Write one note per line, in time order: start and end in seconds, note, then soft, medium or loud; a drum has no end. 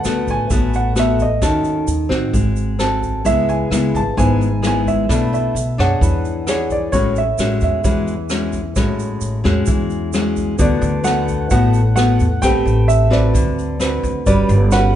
0.00 0.48 D3 medium
0.00 0.29 F#5 medium
0.04 0.26 D2 medium
0.04 0.47 A3 medium
0.04 0.47 B3 medium
0.04 0.47 F#4 medium
0.04 cross-stick medium
0.04 closed hi-hat soft
0.04 shaker medium
0.27 0.49 A1 medium
0.27 0.76 G#5 medium
0.27 kick soft
0.27 closed hi-hat soft
0.27 shaker soft
0.50 1.38 A1 medium
0.50 1.40 A2 medium
0.50 0.93 A3 soft
0.50 0.93 B3 soft
0.50 0.93 F#4 medium
0.50 kick medium
0.50 closed hi-hat soft
0.50 shaker medium
0.74 0.98 F#5 medium
0.74 closed hi-hat soft
0.74 shaker soft
0.96 1.25 A3 soft
0.96 1.25 B3 soft
0.96 1.25 F#4 medium
0.96 1.21 E5 medium
0.96 cross-stick medium
0.96 closed hi-hat soft
0.96 shaker medium
1.19 2.54 D#5 medium
1.19 kick soft
1.19 closed hi-hat soft
1.19 shaker soft
1.42 1.84 D#2 medium
1.42 2.31 D#3 medium
1.42 1.87 C#4 soft
1.42 1.87 F#4 medium
1.42 1.88 A4 medium
1.42 kick soft
1.42 cross-stick soft
1.42 closed hi-hat soft
1.42 shaker medium
1.64 closed hi-hat soft
1.64 shaker soft
1.87 2.09 D#2 medium
1.87 closed hi-hat soft
1.87 shaker medium
2.09 2.32 A2 medium
2.09 2.75 C4 medium
2.09 2.75 F#4 medium
2.09 kick soft
2.09 cross-stick medium
2.09 closed hi-hat soft
2.09 shaker soft
2.33 3.21 G#1 medium
2.33 3.23 G#3 soft
2.33 kick medium
2.33 closed hi-hat soft
2.33 shaker medium
2.56 closed hi-hat soft
2.56 shaker soft
2.79 3.23 C4 soft
2.79 3.23 F#4 soft
2.79 3.24 A4 medium
2.79 cross-stick medium
2.79 closed hi-hat soft
2.79 shaker soft
3.02 kick soft
3.02 closed hi-hat soft
3.02 shaker soft
3.25 3.68 C#2 medium
3.25 4.14 C#3 medium
3.25 3.67 G#3 medium
3.25 3.67 B3 soft
3.25 3.68 E4 medium
3.25 3.49 E5 medium
3.25 kick soft
3.25 closed hi-hat soft
3.25 shaker medium
3.48 3.96 G#5 medium
3.48 closed hi-hat soft
3.48 shaker soft
3.70 3.92 C#2 medium
3.70 4.01 G#3 soft
3.70 4.01 B3 medium
3.70 4.01 E4 medium
3.70 cross-stick medium
3.70 closed hi-hat soft
3.70 shaker medium
3.94 4.16 G#1 medium
3.94 4.19 A5 medium
3.94 kick soft
3.94 closed hi-hat soft
3.94 shaker soft
4.17 5.05 G#1 medium
4.17 5.07 G#2 medium
4.17 4.47 G#3 soft
4.17 4.47 B3 medium
4.17 4.47 E4 medium
4.17 4.65 G#5 loud
4.17 kick medium
4.17 closed hi-hat soft
4.17 shaker soft
4.41 closed hi-hat soft
4.41 shaker soft
4.62 5.05 G#3 medium
4.62 5.05 B3 soft
4.62 5.05 E4 medium
4.62 cross-stick medium
4.62 closed hi-hat soft
4.62 shaker medium
4.67 4.88 G#5 medium
4.86 5.32 E5 medium
4.86 kick soft
4.86 closed hi-hat soft
4.86 shaker soft
5.09 5.52 B1 medium
5.09 5.98 B2 soft
5.09 5.55 A3 soft
5.09 5.55 D4 medium
5.09 5.55 E4 medium
5.09 kick soft
5.09 cross-stick soft
5.09 closed hi-hat soft
5.09 shaker medium
5.32 5.80 E5 medium
5.32 closed hi-hat soft
5.32 shaker soft
5.55 5.76 B1 medium
5.55 closed hi-hat soft
5.55 shaker medium
5.78 6.00 F#2 medium
5.78 6.43 D4 medium
5.78 6.44 G#4 medium
5.78 6.44 C#5 medium
5.78 6.67 F#5 medium
5.78 kick soft
5.78 cross-stick medium
5.78 closed hi-hat soft
5.78 shaker soft
6.01 6.89 E2 medium
6.01 6.90 E3 medium
6.01 kick medium
6.01 closed hi-hat soft
6.01 shaker medium
6.24 closed hi-hat soft
6.24 shaker soft
6.47 6.91 D4 medium
6.47 6.91 G#4 medium
6.47 6.92 C#5 medium
6.47 cross-stick medium
6.47 closed hi-hat soft
6.47 shaker medium
6.70 6.94 D5 medium
6.70 kick soft
6.70 closed hi-hat soft
6.70 shaker soft
6.92 7.35 A1 medium
6.92 7.82 A2 medium
6.92 7.22 G#3 soft
6.92 7.22 C#4 medium
6.92 7.22 F#4 medium
6.92 7.16 C#5 medium
6.92 kick soft
6.92 closed hi-hat soft
6.92 shaker medium
7.16 7.62 E5 medium
7.16 closed hi-hat soft
7.16 shaker soft
7.38 7.60 A1 medium
7.38 7.81 G#3 medium
7.38 7.81 C#4 medium
7.38 7.81 F#4 medium
7.38 cross-stick soft
7.38 closed hi-hat soft
7.38 shaker medium
7.61 7.83 E2 medium
7.61 10.11 E5 medium
7.61 kick soft
7.61 closed hi-hat soft
7.61 shaker soft
7.84 8.72 E2 medium
7.84 8.74 E3 medium
7.84 8.14 G#3 soft
7.84 8.14 C#4 medium
7.84 8.14 F#4 medium
7.84 kick medium
7.84 closed hi-hat soft
7.84 shaker medium
8.07 closed hi-hat soft
8.07 shaker soft
8.30 8.60 G#3 medium
8.30 8.60 C#4 soft
8.30 8.60 F#4 soft
8.30 cross-stick medium
8.30 closed hi-hat soft
8.30 shaker medium
8.52 kick soft
8.52 closed hi-hat soft
8.52 shaker soft
8.76 9.19 A1 medium
8.76 9.65 A2 soft
8.76 9.41 G#3 soft
8.76 9.41 C#4 medium
8.76 9.42 F#4 medium
8.76 kick medium
8.76 cross-stick medium
8.76 closed hi-hat soft
8.76 shaker medium
8.99 closed hi-hat soft
8.99 shaker soft
9.21 9.43 A1 medium
9.21 closed hi-hat soft
9.21 shaker medium
9.44 9.66 E2 medium
9.44 10.09 G#3 medium
9.44 10.10 C#4 medium
9.44 10.10 F#4 medium
9.44 kick soft
9.44 cross-stick soft
9.44 closed hi-hat soft
9.44 shaker soft
9.66 10.55 E2 medium
9.66 10.57 E3 soft
9.66 kick medium
9.66 closed hi-hat soft
9.66 shaker medium
9.90 closed hi-hat soft
9.90 shaker soft
10.13 10.58 G#3 medium
10.13 10.58 C#4 soft
10.13 10.58 F#4 soft
10.13 cross-stick medium
10.13 closed hi-hat soft
10.13 shaker medium
10.36 kick soft
10.36 closed hi-hat soft
10.36 shaker soft
10.59 10.81 D2 medium
10.59 11.48 D3 medium
10.59 11.01 A3 soft
10.59 11.01 B3 medium
10.59 11.02 F#4 medium
10.59 11.07 D5 medium
10.59 kick medium
10.59 closed hi-hat soft
10.59 shaker medium
10.81 11.47 D2 loud
10.81 closed hi-hat soft
10.81 shaker soft
11.04 11.47 A3 soft
11.04 11.47 B3 medium
11.04 11.47 F#4 medium
11.04 11.47 F#5 medium
11.04 cross-stick medium
11.04 closed hi-hat soft
11.04 shaker medium
11.28 kick soft
11.28 closed hi-hat soft
11.28 shaker soft
11.50 12.16 A1 medium
11.50 12.40 A2 soft
11.50 11.80 A3 soft
11.50 11.80 B3 medium
11.50 11.81 F#4 medium
11.50 11.94 F#5 medium
11.50 kick medium
11.50 closed hi-hat soft
11.50 shaker medium
11.74 closed hi-hat soft
11.74 shaker soft
11.96 12.26 A3 medium
11.96 12.26 B3 medium
11.96 12.26 F#4 medium
11.96 12.43 F#5 medium
11.96 cross-stick medium
11.96 closed hi-hat soft
11.96 shaker medium
12.20 12.41 E2 medium
12.20 kick soft
12.20 closed hi-hat soft
12.20 shaker soft
12.42 12.64 A1 medium
12.42 13.32 A3 medium
12.42 13.08 C4 medium
12.42 13.08 G4 medium
12.42 13.08 B4 medium
12.42 12.85 G5 loud
12.42 kick soft
12.42 cross-stick medium
12.42 closed hi-hat soft
12.42 shaker medium
12.65 13.30 A1 medium
12.65 closed hi-hat soft
12.65 shaker soft
12.88 13.12 E5 medium
12.88 closed hi-hat soft
12.88 shaker medium
13.10 13.76 C4 medium
13.10 13.76 F#4 medium
13.10 13.76 B4 medium
13.10 13.99 D5 medium
13.10 kick soft
13.10 cross-stick medium
13.10 closed hi-hat soft
13.10 shaker soft
13.34 13.99 D2 medium
13.34 14.23 D3 medium
13.34 kick medium
13.34 closed hi-hat soft
13.34 shaker medium
13.58 closed hi-hat soft
13.58 shaker soft
13.80 14.24 C4 medium
13.80 14.24 F#4 medium
13.80 14.24 B4 medium
13.80 cross-stick medium
13.80 closed hi-hat soft
13.80 shaker medium
14.03 14.24 D2 medium
14.03 kick soft
14.03 closed hi-hat soft
14.03 shaker soft
14.26 14.47 G1 medium
14.26 14.96 G3 medium
14.26 14.56 C#4 medium
14.26 14.56 F#4 medium
14.26 14.56 B4 medium
14.26 14.73 D5 medium
14.26 kick soft
14.26 closed hi-hat soft
14.26 shaker medium
14.49 14.96 G1 loud
14.49 closed hi-hat soft
14.49 shaker soft
14.71 14.96 C#4 medium
14.71 14.96 F#4 medium
14.71 14.96 B4 medium
14.71 14.96 F#5 medium
14.71 cross-stick medium
14.71 closed hi-hat soft
14.71 shaker medium